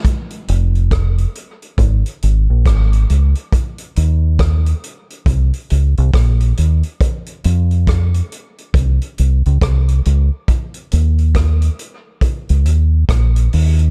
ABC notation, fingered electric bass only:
X:1
M:4/4
L:1/16
Q:"Swing 16ths" 1/4=69
K:Fm
V:1 name="Fingered electric bass" clef=bass
z2 F,,,4 z2 A,,, z A,,, B,,, A,,,2 D,, z | z2 E,,4 z2 C,, z D,, C,, B,,,2 E,, z | z2 F,,4 z2 C,, z C,, D,, C,,2 D,, z | z2 E,,4 z3 D,, E,,2 B,,,2 E,,2 |]